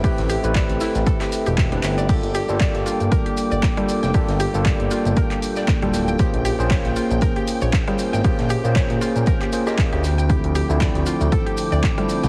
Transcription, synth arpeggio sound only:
X:1
M:4/4
L:1/16
Q:"Swing 16ths" 1/4=117
K:Gdor
V:1 name="Synth arpeggio sound"
G z G z d z E z A G z G z D z d | G z G z d z F z B G z d z G, z g | G z G z d z F z B G z d z G, z g | G z G z _d z F z B G z d z G, z g |
G z G z _d z F z B G z G z G z g | G z G z d z F z A G z d z G, z g |]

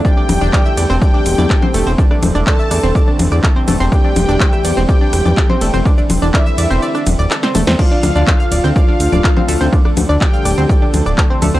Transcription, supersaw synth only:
X:1
M:4/4
L:1/8
Q:1/4=124
K:Cmix
V:1 name="Supersaw synth"
g4 g4 | z2 a3 z3 | g4 g4 | z2 e3 z3 |
f4 f4 | z2 g3 z3 |]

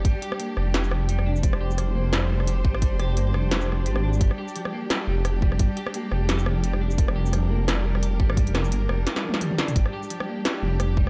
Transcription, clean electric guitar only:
X:1
M:4/4
L:1/8
Q:"Swing 16ths" 1/4=173
K:Gm
V:1 name="Clean electric guitar" clef=bass
G, G B, G, G F, G, D | G, G F, B, G, G, G G, | G, G B, G, G F, G, D | G, G F, B, G, G, G G, |
G, G B, G, G F, G, D | G, G F, B, G, G, G G, | G, G B, G, G F, G, D | G, G F, B, G, G, G G, |]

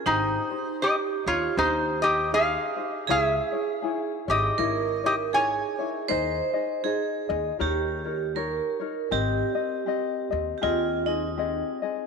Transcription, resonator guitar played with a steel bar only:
X:1
M:4/4
L:1/16
Q:"Swing" 1/4=80
K:Ab
V:1 name="Resonator guitar played with a steel bar"
[Ec]4 [Ge]2 [Fd]2 [Ec]2 [Ge]2 [Af]4 | [A_f]4 z2 [Ge]4 [Ge]2 [da]3 z | z16 | z16 |]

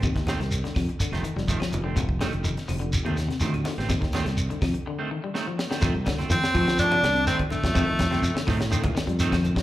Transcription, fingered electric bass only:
X:1
M:4/4
L:1/16
Q:1/4=124
K:Fmix
V:1 name="Fingered electric bass" clef=bass
E,,3 C,,2 z F,, z2 F,,, z F,,,2 z F,,,2 | F,,,2 z F,,,2 z F,,,3 E,,2 z D,,2 z A,,, | E,,3 C,,2 z F,, z8 z | F,, C,, z2 F,, z F,4 C,,2 z3 F,, |
F,, F,,3 F,, z A,,4 z F,,4- F,, |]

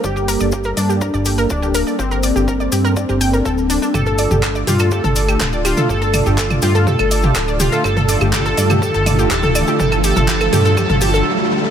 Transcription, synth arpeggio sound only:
X:1
M:4/4
L:1/16
Q:1/4=123
K:Dphr
V:1 name="Synth arpeggio sound"
d G B d G B d G B d G B d G B d | G B d G B d G B d G g B A z D D | G A d G A d G A G A d G A d G A | G A d G A d G A G A d G A d G A |
G A d G G A d G G A d G G A d G | G A G A G A G A G A G A z4 |]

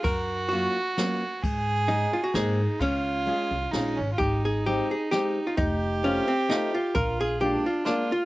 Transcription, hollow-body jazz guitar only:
X:1
M:3/4
L:1/16
Q:"Swing" 1/4=131
K:Db
V:1 name="Hollow-body jazz guitar"
B4 G4 z4 | z4 E2 F G A4 | D8 z4 | [K:Ab] G2 A2 G2 A2 G3 F |
E4 D2 C2 E2 F2 | B2 A2 G2 F2 =D2 F2 |]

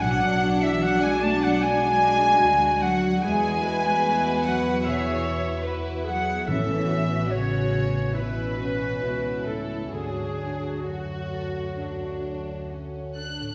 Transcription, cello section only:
X:1
M:4/4
L:1/16
Q:1/4=73
K:A
V:1 name="Cello section" clef=bass
F,3 E, F, G, A, F, G,6 F,2 | G,6 F,2 E,4 z2 F,2 | E,4 C,4 B,,6 A,,2 | G,,4 F,,8 z4 |]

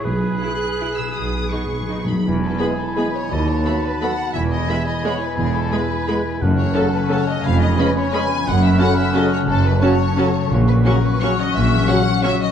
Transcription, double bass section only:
X:1
M:3/4
L:1/8
Q:1/4=172
K:E
V:1 name="Double bass section" clef=bass
B,,,2 z4 | B,,,2 z4 | E,,,2 z4 | D,,2 z4 |
E,,,2 z4 | E,,,2 z4 | F,,,2 z4 | ^E,,,2 z4 |
F,,,2 z4 | F,,,2 z4 | [K:F#mix] A,,,2 z4 | A,,,2 z4 |]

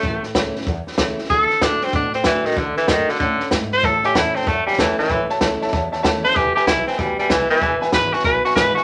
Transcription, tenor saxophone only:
X:1
M:4/4
L:1/8
Q:"Swing" 1/4=190
K:A
V:1 name="Tenor saxophone"
A, z6 z | A2 D =C D C E, ^D, | D, E, ^D, =D, D,2 z =c | A =G E =C A, =G, E, E,- |
E, z6 =c | =G G E =C =G, G, E, E,- | E, z B F B F B F |]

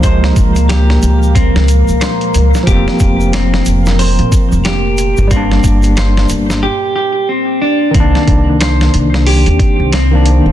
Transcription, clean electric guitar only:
X:1
M:4/4
L:1/8
Q:"Swing 16ths" 1/4=91
K:Cm
V:1 name="Clean electric guitar"
c z G2 C z c z | G2 C z c z G2 | C z c z G G C D | C z c z G2 C z |]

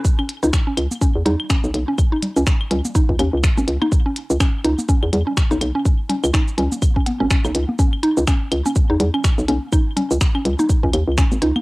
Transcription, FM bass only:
X:1
M:4/4
L:1/16
Q:"Swing 16ths" 1/4=124
K:C#m
V:1 name="FM bass" clef=bass
z3 C,, z2 C,, z2 E,, E,, z2 B,,, B,,, z | z3 C,, z2 C,, z2 C,, D,, C,, z G,,, C,, z | z3 C,, z2 C,, z2 E,, E,, z2 B,,, B,,, z | z3 C,, z2 C,, z4 G,,, z B,,, C,, z |
z3 C,, z2 C,, z2 E,, E,, z2 B,,, B,,, z | z3 C,, z2 C,, z2 C,, D,, C,, z G,,, C,, z |]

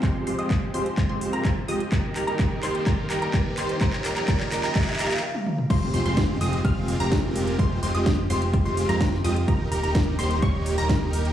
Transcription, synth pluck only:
X:1
M:4/4
L:1/16
Q:1/4=127
K:Fm
V:1 name="Synth pluck"
c'2 c' e' z2 c' z2 c'2 b z2 e' z | b2 b b3 c'2 b2 b b3 c'2 | b2 b b b2 b b b2 b2 z4 | c'2 c' c'3 e'2 f'3 b4- b |
c'2 c' e' z2 c' z2 c'2 b z2 e' z | b2 b b3 c'2 d'3 b4- b |]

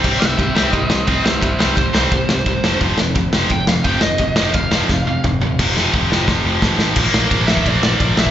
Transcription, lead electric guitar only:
X:1
M:4/4
L:1/8
Q:1/4=173
K:Flyd
V:1 name="Lead electric guitar"
z [eg] [eg] [eg] [c_e] [ce] [ce] [=Ec] | [Ec] [Ec] c6 | z4 g f g _e- | _e e f4 z2 |
z8 | [K:Bblyd] z3 e d d2 e |]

